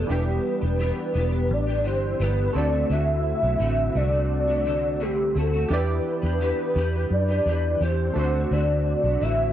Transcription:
0.00 0.13 A4 medium
0.07 0.38 E1 medium
0.07 2.50 E3 medium
0.07 0.62 E3 medium
0.07 2.51 G3 medium
0.07 0.62 B3 medium
0.07 2.51 D4 medium
0.07 0.62 D4 medium
0.11 0.60 G4 medium
0.11 2.52 G4 medium
0.11 1.54 B4 loud
0.61 0.90 E1 medium
0.61 0.78 B3 soft
0.61 0.79 D4 soft
0.61 0.79 G4 medium
0.79 1.12 E3 medium
0.79 1.13 B3 medium
0.79 1.15 D4 medium
0.79 1.16 G4 medium
1.14 1.50 E1 medium
1.14 1.32 E3 medium
1.14 1.32 B3 medium
1.14 1.32 D4 medium
1.14 1.30 G4 medium
1.31 1.68 B3 soft
1.31 1.67 D4 soft
1.31 1.65 G4 medium
1.50 1.86 A1 medium
1.50 1.86 D5 loud
1.67 1.86 B3 soft
1.67 1.84 D4 soft
1.67 1.85 G4 soft
1.84 2.13 G1 medium
1.84 2.19 E3 medium
1.84 2.20 D4 medium
1.84 2.20 G4 medium
1.84 2.23 C5 loud
2.20 2.48 G1 medium
2.20 2.55 E3 medium
2.20 2.55 B3 medium
2.20 2.56 D4 medium
2.20 2.56 G4 medium
2.20 2.58 B4 loud
2.53 2.83 D2 medium
2.53 2.72 D3 medium
2.53 5.31 A3 medium
2.53 2.73 A3 medium
2.53 5.32 C4 medium
2.53 2.72 C4 medium
2.53 5.32 D4 medium
2.53 2.93 D5 loud
2.57 2.71 F#4 medium
2.57 5.33 A4 medium
2.72 2.89 A3 soft
2.72 2.90 C4 medium
2.72 2.90 F#4 soft
2.89 3.32 D2 loud
2.89 3.42 D3 medium
2.89 3.43 A3 medium
2.89 3.42 C4 medium
2.89 3.41 F#4 medium
2.89 3.98 E5 loud
3.42 3.57 B1 medium
3.42 3.58 A3 soft
3.42 3.59 C4 soft
3.42 3.60 F#4 soft
3.59 3.88 A1 medium
3.59 3.93 D3 medium
3.59 3.94 A3 medium
3.59 3.95 C4 medium
3.59 3.96 F#4 medium
3.94 5.32 C2 medium
3.94 4.12 D3 medium
3.94 4.13 A3 medium
3.94 4.12 C4 medium
3.94 4.11 F#4 medium
3.94 5.03 D5 loud
4.12 4.49 A3 soft
4.12 4.48 C4 soft
4.12 4.46 F#4 medium
4.47 4.65 A3 soft
4.47 4.66 C4 soft
4.47 4.65 F#4 soft
4.65 4.99 D3 medium
4.65 4.99 A3 medium
4.65 5.00 C4 medium
4.65 5.02 F#4 medium
5.00 5.34 D3 medium
5.00 5.35 A3 medium
5.00 5.36 C4 medium
5.00 5.38 G4 loud
5.35 5.64 D2 medium
5.35 5.53 D3 medium
5.35 5.53 A3 medium
5.35 5.53 C4 medium
5.35 5.51 F#4 medium
5.35 5.74 A4 medium
5.52 5.72 A3 soft
5.52 5.70 C4 medium
5.52 5.70 F#4 medium
5.68 5.98 E2 loud
5.68 6.23 E3 medium
5.68 8.12 D4 medium
5.68 6.23 D4 medium
5.68 8.13 E4 medium
5.68 8.11 G4 medium
5.68 6.22 G4 medium
5.68 6.21 B4 medium
5.68 7.12 B4 loud
5.73 8.14 D5 medium
6.22 6.51 E2 medium
6.22 6.40 D4 soft
6.22 6.40 G4 soft
6.22 6.40 B4 soft
6.40 6.74 E3 medium
6.40 6.75 D4 medium
6.40 6.75 G4 medium
6.40 6.77 B4 medium
6.75 7.04 E2 loud
6.75 6.93 E3 medium
6.75 6.93 D4 medium
6.75 6.94 G4 medium
6.75 6.92 B4 medium
6.93 7.30 D4 soft
6.93 7.28 G4 soft
6.93 7.27 B4 medium
7.11 7.39 F#2 medium
7.11 7.84 D5 loud
7.28 7.46 D4 soft
7.28 7.47 G4 medium
7.28 7.46 B4 soft
7.46 7.74 E2 medium
7.46 7.80 E3 medium
7.46 7.80 D4 medium
7.46 7.81 G4 medium
7.46 7.83 B4 medium
7.81 8.09 E2 medium
7.81 8.15 E3 medium
7.81 8.17 D4 medium
7.81 8.17 G4 medium
7.81 8.54 C5 loud
8.14 8.44 D2 medium
8.14 8.34 D3 medium
8.14 9.53 A3 medium
8.14 8.34 A3 medium
8.14 9.53 D4 medium
8.14 9.53 F#4 medium
8.18 8.34 C4 medium
8.18 8.32 F#4 medium
8.18 9.53 C5 medium
8.33 8.51 A3 soft
8.33 8.52 C4 soft
8.33 8.51 F#4 medium
8.51 8.93 D2 loud
8.51 9.04 D3 medium
8.51 9.05 A3 medium
8.51 9.04 C4 medium
8.51 9.02 F#4 medium
8.51 9.24 D5 loud
9.03 9.18 B1 medium
9.03 9.20 A3 soft
9.03 9.21 C4 soft
9.03 9.21 F#4 soft
9.21 9.50 A1 medium
9.21 9.53 D3 medium
9.21 9.53 A3 medium
9.21 9.53 C4 medium
9.21 9.53 F#4 loud
9.21 9.53 E5 loud

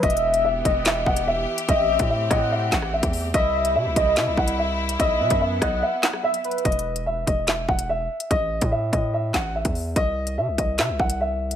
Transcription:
0.03 0.63 E1 loud
0.03 1.67 E3 medium
0.03 1.67 B3 medium
0.03 3.31 G4 medium
0.03 0.42 D#5 loud
0.03 0.61 E5 loud
0.03 kick loud
0.03 closed hi-hat medium
0.10 closed hi-hat medium
0.17 closed hi-hat medium
0.34 closed hi-hat medium
0.45 0.64 E5 medium
0.65 1.05 E1 loud
0.65 0.85 D#5 medium
0.65 1.24 D#5 medium
0.65 kick loud
0.65 closed hi-hat medium
0.85 1.06 E5 medium
0.85 snare loud
0.85 clap medium
0.85 closed hi-hat medium
1.06 1.46 E1 loud
1.06 1.26 F#5 medium
1.06 kick loud
1.16 closed hi-hat medium
1.27 1.66 E5 medium
1.58 closed hi-hat medium
1.69 1.98 A1 loud
1.69 3.32 A3 medium
1.69 3.32 C4 medium
1.69 2.08 D#5 loud
1.69 2.27 E5 loud
1.69 kick loud
1.69 closed hi-hat medium
1.99 2.29 A2 loud
1.99 kick loud
1.99 closed hi-hat medium
2.10 2.29 E5 medium
2.30 2.70 A2 loud
2.30 2.50 D#5 medium
2.30 2.89 F#5 medium
2.30 kick medium
2.30 cross-stick medium
2.30 closed hi-hat medium
2.52 2.71 E5 medium
2.72 3.02 A1 loud
2.72 2.92 F#5 medium
2.72 kick loud
2.72 snare loud
2.72 clap medium
2.72 closed hi-hat medium
2.82 cross-stick medium
2.93 3.32 E5 medium
3.03 3.33 E2 loud
3.03 kick loud
3.03 closed hi-hat medium
3.13 open hi-hat medium
3.34 3.77 C2 loud
3.34 4.98 C3 medium
3.34 4.98 G3 medium
3.34 6.62 E4 medium
3.34 3.73 D#5 loud
3.34 3.93 E5 loud
3.34 kick loud
3.34 closed hi-hat medium
3.65 closed hi-hat medium
3.75 3.87 C3 loud
3.75 3.95 E5 medium
3.86 3.96 C2 loud
3.96 4.18 C2 loud
3.96 4.16 D#5 medium
3.96 4.55 D#5 medium
3.96 kick loud
3.96 closed hi-hat medium
4.16 4.29 C3 loud
4.16 4.36 E5 medium
4.16 snare loud
4.16 clap medium
4.16 closed hi-hat medium
4.27 4.37 C2 loud
4.37 4.97 C2 loud
4.37 4.57 F#5 medium
4.37 kick loud
4.48 closed hi-hat medium
4.59 4.97 E5 medium
4.89 closed hi-hat medium
4.99 5.22 B1 loud
4.99 6.63 F#3 medium
4.99 6.63 B3 medium
4.99 5.38 D#5 loud
4.99 5.58 E5 loud
4.99 kick loud
4.99 closed hi-hat medium
5.20 5.30 B2 loud
5.30 5.60 F#2 loud
5.30 kick loud
5.30 closed hi-hat medium
5.41 5.60 E5 medium
5.62 5.82 B1 loud
5.62 5.81 D#5 medium
5.62 6.20 F#5 medium
5.62 kick loud
5.62 cross-stick loud
5.62 closed hi-hat medium
5.82 6.02 E5 medium
6.03 6.23 F#5 medium
6.03 snare loud
6.03 clap medium
6.03 closed hi-hat medium
6.13 cross-stick medium
6.23 6.63 E5 medium
6.23 6.44 E5 medium
6.34 closed hi-hat medium
6.44 6.64 B4 medium
6.44 closed hi-hat soft
6.44 open hi-hat medium
6.51 closed hi-hat soft
6.58 closed hi-hat medium
6.65 7.25 E1 loud
6.65 7.04 D#5 loud
6.65 kick loud
6.65 closed hi-hat medium
6.72 closed hi-hat medium
6.79 closed hi-hat medium
6.96 closed hi-hat medium
7.06 7.26 E5 medium
7.27 7.67 E1 loud
7.27 7.46 D#5 medium
7.27 kick medium
7.27 closed hi-hat medium
7.47 7.67 E5 medium
7.47 snare loud
7.47 clap medium
7.47 closed hi-hat medium
7.69 8.08 E1 loud
7.69 7.88 F#5 medium
7.69 kick loud
7.79 closed hi-hat medium
7.89 8.28 E5 medium
8.20 closed hi-hat medium
8.31 8.61 A1 loud
8.31 8.70 D#5 loud
8.31 kick loud
8.31 closed hi-hat medium
8.61 8.92 A2 loud
8.61 kick medium
8.61 closed hi-hat medium
8.72 8.91 E5 medium
8.92 9.33 A2 loud
8.92 9.12 D#5 medium
8.92 kick medium
8.92 closed hi-hat medium
9.13 9.33 E5 medium
9.34 9.64 A1 loud
9.34 9.54 F#5 medium
9.34 kick medium
9.34 snare loud
9.34 clap medium
9.34 closed hi-hat medium
9.55 9.94 E5 medium
9.65 9.95 E2 loud
9.65 kick loud
9.65 closed hi-hat medium
9.75 open hi-hat medium
9.96 10.39 C2 loud
9.96 10.35 D#5 loud
9.96 kick loud
9.96 closed hi-hat medium
10.27 closed hi-hat medium
10.37 10.49 C3 loud
10.37 10.57 E5 medium
10.48 10.58 C2 loud
10.58 10.80 C2 loud
10.58 10.78 D#5 medium
10.58 kick medium
10.58 closed hi-hat medium
10.78 10.91 C3 loud
10.78 10.98 E5 medium
10.78 snare loud
10.78 clap medium
10.78 closed hi-hat medium
10.89 10.99 C2 loud
10.99 11.56 C2 loud
10.99 11.19 F#5 medium
10.99 kick medium
11.10 closed hi-hat medium
11.21 11.56 E5 medium
11.51 closed hi-hat medium

